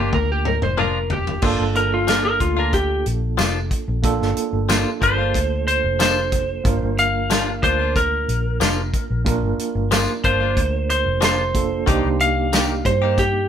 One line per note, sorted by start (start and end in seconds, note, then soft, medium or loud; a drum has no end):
0.00 0.17 A#3 medium
0.00 1.39 A#3 medium
0.00 0.16 D4 soft
0.00 1.39 D4 medium
0.00 0.16 F4 medium
0.00 1.40 F4 medium
0.00 0.13 G4 medium
0.00 1.40 A#4 medium
0.13 0.58 D2 medium
0.13 0.30 A#4 medium
0.13 kick medium
0.13 mid tom medium
0.32 0.46 G4 medium
0.45 0.62 A#4 medium
0.45 mid tom medium
0.62 1.39 F1 medium
0.62 0.78 C5 medium
0.62 mid tom medium
0.77 0.98 F3 medium
0.77 0.98 A#3 medium
0.77 0.98 D4 medium
0.77 0.99 F4 medium
0.77 1.11 A#4 medium
0.77 mid tom medium
1.10 1.43 G4 medium
1.10 floor tom medium
1.27 floor tom medium
1.42 1.58 G1 medium
1.42 1.63 F3 medium
1.42 3.99 A#3 medium
1.42 1.63 A#3 medium
1.42 4.00 D4 medium
1.42 1.64 D4 medium
1.42 4.00 F4 medium
1.42 1.64 F4 medium
1.42 4.01 A4 medium
1.42 kick loud
1.42 crash loud
1.60 2.37 G1 medium
1.75 1.93 A#4 medium
1.75 closed hi-hat medium
1.94 2.08 F4 medium
2.07 2.28 F3 medium
2.07 2.29 A#3 medium
2.07 2.29 D4 medium
2.07 2.29 F4 medium
2.07 2.24 A#4 medium
2.07 snare loud
2.07 closed hi-hat medium
2.07 tambourine loud
2.25 2.40 A#4 medium
2.40 3.02 D2 medium
2.40 2.57 F4 medium
2.40 kick medium
2.40 closed hi-hat medium
2.57 2.78 A#3 soft
2.57 2.77 D4 medium
2.57 2.76 F4 medium
2.57 2.74 A#4 medium
2.73 3.05 G4 loud
2.73 kick medium
2.73 closed hi-hat medium
3.06 3.36 A#1 medium
3.06 closed hi-hat medium
3.38 3.69 F1 medium
3.38 3.58 F3 medium
3.38 3.58 A#3 medium
3.38 3.59 D4 medium
3.38 3.59 F4 loud
3.38 snare loud
3.38 closed hi-hat medium
3.38 tambourine loud
3.71 kick medium
3.71 closed hi-hat medium
3.88 4.18 A#1 medium
4.02 6.60 A#3 medium
4.02 6.61 D4 medium
4.02 6.61 F4 medium
4.02 6.61 A4 medium
4.02 kick loud
4.02 closed hi-hat medium
4.21 4.36 G1 medium
4.21 snare soft
4.37 closed hi-hat medium
4.53 4.83 G1 medium
4.69 4.89 F3 medium
4.69 4.89 A#3 medium
4.69 4.90 D4 medium
4.69 4.90 F4 medium
4.69 snare loud
4.69 closed hi-hat medium
4.69 tambourine loud
5.01 5.32 G1 medium
5.01 5.18 F3 medium
5.01 5.19 A#3 medium
5.01 5.19 D4 medium
5.01 5.17 F4 medium
5.01 5.66 C5 medium
5.01 kick medium
5.01 closed hi-hat medium
5.18 5.39 A#3 soft
5.18 5.39 D4 soft
5.18 5.38 F4 soft
5.34 5.80 D2 medium
5.34 kick medium
5.34 closed hi-hat medium
5.67 5.99 C5 medium
5.67 closed hi-hat medium
5.84 6.61 F1 medium
6.00 6.20 F3 medium
6.00 6.20 A#3 medium
6.00 6.20 D4 medium
6.00 6.21 F4 medium
6.00 6.96 C5 medium
6.00 snare loud
6.00 closed hi-hat medium
6.00 tambourine loud
6.32 kick medium
6.32 closed hi-hat medium
6.64 6.81 G1 medium
6.64 9.22 A#3 medium
6.64 9.22 D4 medium
6.64 9.22 F4 medium
6.64 9.23 A#4 medium
6.64 kick loud
6.64 closed hi-hat medium
6.83 7.59 G1 medium
6.98 7.62 F5 medium
6.98 closed hi-hat medium
7.30 7.50 F3 medium
7.30 7.51 A#3 medium
7.30 7.51 D4 medium
7.30 7.51 F4 medium
7.30 snare loud
7.30 closed hi-hat medium
7.30 tambourine loud
7.63 8.24 D2 medium
7.63 7.80 F3 soft
7.63 7.80 A#3 medium
7.63 7.80 D4 medium
7.63 7.78 F4 medium
7.63 7.95 C5 medium
7.63 kick medium
7.63 closed hi-hat medium
7.79 8.00 A#3 soft
7.79 7.99 D4 soft
7.79 7.99 F4 soft
7.96 9.88 A#4 medium
7.96 kick medium
7.96 closed hi-hat medium
8.28 8.58 A#1 medium
8.28 closed hi-hat medium
8.60 8.91 F1 medium
8.60 8.81 F3 medium
8.60 8.81 A#3 medium
8.60 8.81 D4 medium
8.60 8.82 F4 medium
8.60 snare loud
8.60 closed hi-hat medium
8.60 tambourine loud
8.94 kick medium
8.94 closed hi-hat medium
9.10 9.41 A#1 medium
9.25 11.50 A#3 medium
9.25 11.50 D4 medium
9.25 11.51 F4 medium
9.25 11.51 A#4 medium
9.25 kick loud
9.25 closed hi-hat medium
9.43 9.58 G1 medium
9.58 muted fingered electric bass stroke soft
9.58 closed hi-hat medium
9.75 10.06 G1 medium
9.91 10.11 F3 medium
9.91 10.12 A#3 medium
9.91 10.12 D4 medium
9.91 10.12 F4 medium
9.91 snare loud
9.91 closed hi-hat medium
9.91 tambourine loud
10.24 10.54 G1 medium
10.24 10.41 F3 medium
10.24 10.41 A#3 medium
10.24 10.40 D4 medium
10.24 10.39 F4 medium
10.24 10.88 C5 loud
10.24 kick medium
10.24 closed hi-hat medium
10.40 10.61 A#3 soft
10.40 10.60 D4 soft
10.40 10.60 F4 medium
10.57 11.03 D2 medium
10.57 kick medium
10.57 closed hi-hat medium
10.90 11.22 C5 medium
10.90 closed hi-hat medium
11.06 11.83 F1 medium
11.21 11.42 F3 medium
11.21 11.42 A#3 medium
11.21 11.42 D4 medium
11.21 11.42 F4 medium
11.21 12.18 C5 medium
11.21 snare loud
11.21 closed hi-hat medium
11.21 tambourine loud
11.54 11.85 A#3 soft
11.54 11.86 D4 soft
11.54 11.88 F4 soft
11.54 11.88 A4 medium
11.54 kick medium
11.54 closed hi-hat medium
11.86 12.03 C2 medium
11.86 12.07 D#3 medium
11.86 13.48 A#3 medium
11.86 12.07 A#3 medium
11.86 13.48 D4 medium
11.86 13.48 D#4 medium
11.86 12.08 D#4 medium
11.86 13.48 G4 medium
11.86 12.08 G4 medium
11.86 kick loud
11.86 closed hi-hat medium
12.04 12.81 C2 medium
12.20 12.84 F5 medium
12.20 closed hi-hat medium
12.53 12.73 D#3 medium
12.53 12.73 A#3 medium
12.53 12.73 D#4 medium
12.53 12.74 G4 medium
12.53 snare loud
12.53 closed hi-hat medium
12.53 tambourine loud
12.85 13.47 G2 medium
12.85 13.17 C5 medium
12.85 kick medium
12.85 closed hi-hat medium
13.02 13.23 A#3 soft
13.02 13.22 D#4 soft
13.02 13.21 G4 soft
13.18 13.48 G4 loud
13.18 kick medium
13.18 closed hi-hat medium